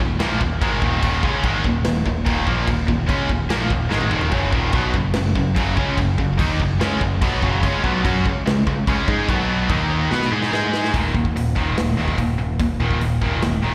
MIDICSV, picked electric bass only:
0, 0, Header, 1, 2, 480
1, 0, Start_track
1, 0, Key_signature, -6, "minor"
1, 0, Tempo, 412939
1, 1202, Time_signature, 4, 2, 24, 8
1, 15976, End_track
2, 0, Start_track
2, 0, Title_t, "Picked electric bass"
2, 0, Program_c, 0, 34
2, 0, Note_on_c, 0, 27, 78
2, 224, Note_off_c, 0, 27, 0
2, 236, Note_on_c, 0, 34, 91
2, 462, Note_off_c, 0, 34, 0
2, 474, Note_on_c, 0, 27, 88
2, 701, Note_off_c, 0, 27, 0
2, 715, Note_on_c, 0, 32, 97
2, 942, Note_off_c, 0, 32, 0
2, 951, Note_on_c, 0, 27, 96
2, 1179, Note_off_c, 0, 27, 0
2, 1194, Note_on_c, 0, 27, 96
2, 1420, Note_off_c, 0, 27, 0
2, 1431, Note_on_c, 0, 37, 100
2, 1658, Note_off_c, 0, 37, 0
2, 1665, Note_on_c, 0, 32, 100
2, 1895, Note_off_c, 0, 32, 0
2, 1914, Note_on_c, 0, 27, 72
2, 2140, Note_off_c, 0, 27, 0
2, 2155, Note_on_c, 0, 27, 84
2, 2380, Note_off_c, 0, 27, 0
2, 2391, Note_on_c, 0, 27, 83
2, 2618, Note_off_c, 0, 27, 0
2, 2632, Note_on_c, 0, 27, 88
2, 2858, Note_off_c, 0, 27, 0
2, 2871, Note_on_c, 0, 34, 93
2, 3097, Note_off_c, 0, 34, 0
2, 3110, Note_on_c, 0, 27, 77
2, 3337, Note_off_c, 0, 27, 0
2, 3350, Note_on_c, 0, 27, 73
2, 3576, Note_off_c, 0, 27, 0
2, 3591, Note_on_c, 0, 37, 107
2, 3817, Note_off_c, 0, 37, 0
2, 3827, Note_on_c, 0, 27, 71
2, 4055, Note_off_c, 0, 27, 0
2, 4064, Note_on_c, 0, 34, 84
2, 4293, Note_off_c, 0, 34, 0
2, 4308, Note_on_c, 0, 27, 83
2, 4535, Note_off_c, 0, 27, 0
2, 4547, Note_on_c, 0, 32, 85
2, 4774, Note_off_c, 0, 32, 0
2, 4791, Note_on_c, 0, 27, 97
2, 5016, Note_off_c, 0, 27, 0
2, 5023, Note_on_c, 0, 30, 91
2, 5252, Note_off_c, 0, 30, 0
2, 5261, Note_on_c, 0, 27, 90
2, 5487, Note_off_c, 0, 27, 0
2, 5494, Note_on_c, 0, 35, 91
2, 5727, Note_off_c, 0, 35, 0
2, 5740, Note_on_c, 0, 30, 79
2, 5970, Note_off_c, 0, 30, 0
2, 5992, Note_on_c, 0, 30, 82
2, 6217, Note_off_c, 0, 30, 0
2, 6224, Note_on_c, 0, 30, 85
2, 6453, Note_off_c, 0, 30, 0
2, 6469, Note_on_c, 0, 30, 99
2, 6695, Note_off_c, 0, 30, 0
2, 6711, Note_on_c, 0, 37, 92
2, 6936, Note_off_c, 0, 37, 0
2, 6942, Note_on_c, 0, 30, 81
2, 7172, Note_off_c, 0, 30, 0
2, 7187, Note_on_c, 0, 30, 85
2, 7414, Note_off_c, 0, 30, 0
2, 7428, Note_on_c, 0, 39, 89
2, 7655, Note_off_c, 0, 39, 0
2, 7668, Note_on_c, 0, 30, 76
2, 7895, Note_off_c, 0, 30, 0
2, 7907, Note_on_c, 0, 37, 95
2, 8135, Note_off_c, 0, 37, 0
2, 8148, Note_on_c, 0, 30, 80
2, 8375, Note_off_c, 0, 30, 0
2, 8386, Note_on_c, 0, 35, 96
2, 8614, Note_off_c, 0, 35, 0
2, 8628, Note_on_c, 0, 30, 102
2, 8855, Note_off_c, 0, 30, 0
2, 8868, Note_on_c, 0, 37, 99
2, 9095, Note_off_c, 0, 37, 0
2, 9109, Note_on_c, 0, 35, 104
2, 9336, Note_off_c, 0, 35, 0
2, 9353, Note_on_c, 0, 42, 105
2, 9578, Note_off_c, 0, 42, 0
2, 9597, Note_on_c, 0, 37, 78
2, 9820, Note_off_c, 0, 37, 0
2, 9839, Note_on_c, 0, 37, 77
2, 10061, Note_off_c, 0, 37, 0
2, 10072, Note_on_c, 0, 37, 91
2, 10298, Note_off_c, 0, 37, 0
2, 10314, Note_on_c, 0, 37, 96
2, 10539, Note_off_c, 0, 37, 0
2, 10554, Note_on_c, 0, 44, 103
2, 10779, Note_off_c, 0, 44, 0
2, 10794, Note_on_c, 0, 35, 94
2, 11242, Note_off_c, 0, 35, 0
2, 11267, Note_on_c, 0, 39, 97
2, 11718, Note_off_c, 0, 39, 0
2, 11753, Note_on_c, 0, 47, 91
2, 11979, Note_off_c, 0, 47, 0
2, 11990, Note_on_c, 0, 44, 106
2, 12217, Note_off_c, 0, 44, 0
2, 12235, Note_on_c, 0, 44, 84
2, 12683, Note_off_c, 0, 44, 0
2, 12714, Note_on_c, 0, 27, 80
2, 12930, Note_off_c, 0, 27, 0
2, 12952, Note_on_c, 0, 27, 81
2, 13169, Note_off_c, 0, 27, 0
2, 13202, Note_on_c, 0, 27, 89
2, 13415, Note_off_c, 0, 27, 0
2, 13437, Note_on_c, 0, 27, 79
2, 13652, Note_off_c, 0, 27, 0
2, 13918, Note_on_c, 0, 27, 82
2, 14133, Note_off_c, 0, 27, 0
2, 14159, Note_on_c, 0, 27, 81
2, 14374, Note_off_c, 0, 27, 0
2, 14401, Note_on_c, 0, 27, 87
2, 14615, Note_off_c, 0, 27, 0
2, 14639, Note_on_c, 0, 27, 90
2, 14854, Note_off_c, 0, 27, 0
2, 14878, Note_on_c, 0, 27, 87
2, 15094, Note_off_c, 0, 27, 0
2, 15119, Note_on_c, 0, 27, 87
2, 15335, Note_off_c, 0, 27, 0
2, 15364, Note_on_c, 0, 27, 82
2, 15577, Note_off_c, 0, 27, 0
2, 15601, Note_on_c, 0, 27, 94
2, 15816, Note_off_c, 0, 27, 0
2, 15839, Note_on_c, 0, 27, 82
2, 15976, Note_off_c, 0, 27, 0
2, 15976, End_track
0, 0, End_of_file